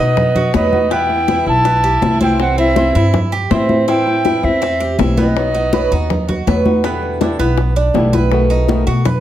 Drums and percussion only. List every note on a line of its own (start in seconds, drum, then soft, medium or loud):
0.17 high bongo medium
0.17 high conga soft
0.17 low conga medium
0.35 high bongo soft
0.35 high conga soft
0.35 low conga medium
0.54 high bongo medium
0.54 low bongo medium
0.54 high conga medium
0.73 high bongo soft
0.73 high conga medium
0.91 high bongo medium
0.91 high conga soft
1.10 high bongo soft
1.10 high conga soft
1.28 high bongo medium
1.28 high conga medium
1.47 high bongo soft
1.47 high conga soft
1.65 high bongo medium
1.65 high conga soft
1.84 high bongo soft
1.84 high conga soft
2.02 high bongo medium
2.02 low bongo medium
2.02 high conga medium
2.21 high conga medium
2.39 high bongo medium
2.39 high conga soft
2.58 high conga soft
2.76 high bongo medium
2.76 high conga medium
2.95 high bongo soft
2.95 high conga soft
3.14 high bongo medium
3.14 high conga soft
3.14 low conga medium
3.32 high bongo soft
3.32 high conga soft
3.51 high bongo medium
3.51 low bongo medium
3.51 high conga medium
3.69 high bongo soft
3.69 high conga medium
3.88 high bongo medium
3.88 high conga soft
4.07 high bongo soft
4.07 high conga soft
4.25 high bongo medium
4.25 high conga medium
4.43 high bongo soft
4.43 high conga soft
4.62 high bongo medium
4.62 high conga soft
4.81 high bongo soft
4.81 high conga soft
4.99 high bongo medium
4.99 low bongo medium
4.99 high conga medium
5.17 high conga medium
5.36 high bongo medium
5.36 high conga soft
5.55 high conga soft
5.73 high bongo medium
5.73 high conga medium
5.92 high bongo soft
5.92 high conga soft
6.10 high bongo medium
6.10 high conga soft
6.10 low conga medium
6.29 high bongo soft
6.29 high conga soft
6.29 low conga medium
6.47 high bongo medium
6.47 low bongo medium
6.47 high conga medium
6.66 high bongo soft
6.66 high conga medium
6.84 high bongo medium
6.84 high conga soft
7.03 high bongo soft
7.03 high conga soft
7.21 high bongo medium
7.21 high conga medium
7.39 high bongo soft
7.39 high conga soft
7.58 high bongo medium
7.58 high conga soft
7.76 high conga soft
7.94 high bongo soft
7.94 low bongo medium
7.94 high conga medium
8.13 high bongo soft
8.13 high conga medium
8.32 high bongo medium
8.32 high conga soft
8.51 high bongo soft
8.51 high conga soft
8.68 high bongo medium
8.68 high conga medium
8.87 high bongo soft
8.87 high conga soft
9.05 high bongo medium
9.05 high conga soft
9.05 low conga medium